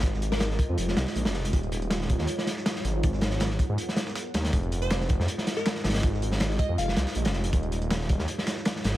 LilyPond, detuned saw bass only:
\new Staff \with { instrumentName = "Detuned saw bass" } { \clef bass \time 4/4 \key ees \dorian \tempo 4 = 160 aes,,4. r16 f,16 f,,8 c,16 r16 bes,,16 f,,16 f,,8 | ees,,4.~ ees,,16 ees,16 r4. aes,,8~ | aes,,4. r16 aes,16 r4. ees,8 | f,,4.~ f,,16 f,16 r4. aes,,8~ |
aes,,4. r16 f,16 f,,8 c,16 r16 bes,,16 f,,16 f,,8 | ees,,4.~ ees,,16 ees,16 r4. aes,,8 | }